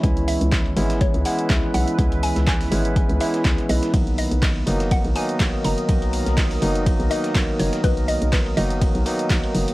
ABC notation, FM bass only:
X:1
M:4/4
L:1/16
Q:"Swing 16ths" 1/4=123
K:B
V:1 name="FM bass" clef=bass
C,,3 C,,3 G,,,3 C,, z2 C,, z B,,, z | C,,3 C,,3 G,,,3 C,, z2 C,, z B,,, z | B,,,3 B,,,3 F,,,3 B,,, z2 B,,, z F,,, z | B,,,3 B,,,3 F,,,3 B,,, z2 B,,, z F,,, z |
B,,,3 B,,,3 F,,,3 B,,, z2 B,,, z F,,, z |]